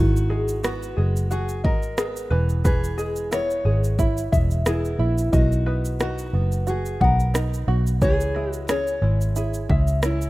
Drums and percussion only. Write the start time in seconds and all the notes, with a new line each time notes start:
0.17 shaker
0.30 cross-stick
0.48 shaker
0.64 cross-stick, shaker
0.83 shaker
1.16 shaker
1.31 shaker
1.49 shaker
1.65 kick
1.83 shaker
1.98 cross-stick, shaker
2.17 shaker
2.49 shaker
2.65 kick, shaker
2.84 shaker
2.98 cross-stick, shaker
3.16 shaker
3.32 cross-stick, shaker
3.51 shaker
3.84 shaker
3.99 kick, shaker
4.18 shaker
4.33 kick, shaker
4.51 shaker
4.66 cross-stick, shaker
4.85 shaker
5.18 shaker
5.33 kick, shaker
5.52 shaker
5.66 cross-stick
5.85 shaker
6.00 cross-stick, shaker
6.18 shaker
6.52 shaker
6.67 shaker
6.86 shaker
7.01 kick
7.20 shaker
7.35 cross-stick, shaker
7.54 shaker
7.87 shaker
8.02 kick, shaker
8.21 shaker
8.35 cross-stick
8.53 shaker
8.68 cross-stick, shaker
8.87 shaker
9.21 shaker
9.36 shaker
9.54 shaker
9.70 kick
9.87 shaker
10.03 cross-stick, shaker
10.22 shaker